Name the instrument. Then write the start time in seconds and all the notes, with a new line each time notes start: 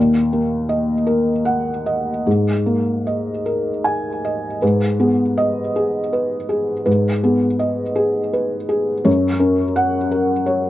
felt piano
Already playing: D#2
0.33 A#3
0.69 D#5
1.07 A#4
1.45 F#5
1.86 D#5
2.27 G#2
2.66 A#3
3.07 D#5
3.46 A#4
3.84 G#5
4.25 D#5
4.62 G#2 B4
5.00 B3 G#4
5.38 D#5
5.76 G#4
6.13 B4
6.49 G#4
6.86 G#2 B4
7.23 B3 G#4
7.59 D#5
7.96 G#4
8.33 B4
8.69 G#4
9.05 F#2 C#5
9.39 C#4 A#4
9.76 F#5
10.11 A#4
10.46 C#5